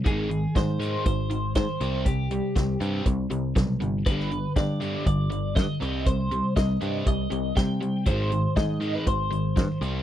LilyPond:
<<
  \new Staff \with { instrumentName = "Clean electric guitar" } { \time 4/4 \key c \minor \tempo 4 = 120 aes'4 c''4 c''4 c''4 | g'2 r2 | b'4 d''4 d''4 ees''4 | c''4 ees''4 ees''4 g''4 |
c''4 ees''8. b'16 c''2 | }
  \new Staff \with { instrumentName = "Overdriven electric guitar" } { \clef bass \time 4/4 \key c \minor <aes, ees aes>8 <aes, ees>8 <aes, ees>8 <aes, ees aes>8 <aes, ees>8 <aes, ees>8 <aes, ees>8 <c g c'>8 | <c g>8 <c g>8 <c g>8 <c g c'>8 <c g>8 <c g>8 <c g>8 <c g>8 | <g, d g>8 <g, d>8 <g, d>8 <g, d g>8 <g, d>8 <g, d>8 <g, d>8 <c g c'>8 | <c g>8 <c g>8 <c g>8 <c g c'>8 <c g>8 <c g>8 <c g>8 <c g>8 |
<aes, ees aes>8 <aes, ees>8 <aes, ees>8 <aes, ees aes>8 <aes, ees>8 <aes, ees>8 <aes, ees>8 <c g c'>8 | }
  \new Staff \with { instrumentName = "Picked electric bass" } { \clef bass \time 4/4 \key c \minor aes,,4 aes,4 aes,,4 aes,16 r16 c,8~ | c,4 c,8 g,8 c,8 c,8 b,,8 g,,8 | g,,4 g,4 g,,4 g,16 r16 c,8~ | c,4 c,8 g,8 c,8 c,8 c4 |
aes,,4 aes,4 aes,,4 g,16 r16 c,8 | }
  \new DrumStaff \with { instrumentName = "Drums" } \drummode { \time 4/4 <hh bd>8 hh8 <hh bd sn>8 hh8 <hh bd>8 hh8 <hh bd sn>8 hh8 | <hh bd>8 hh8 <hh bd sn>8 hh8 <hh bd>8 hh8 <hh bd sn>8 hh8 | <hh bd>16 sn16 hh8 <hh bd sn>8 hh8 <hh bd>8 hh8 <hh bd sn>8 hh8 | <hh bd>8 hh8 <hh bd sn>8 hh8 <hh bd>8 hh8 <hh bd sn>8 hh8 |
<hh bd>8 hh8 <hh bd sn>8 hh8 <hh bd>8 hh8 <hh bd sn>8 hh8 | }
>>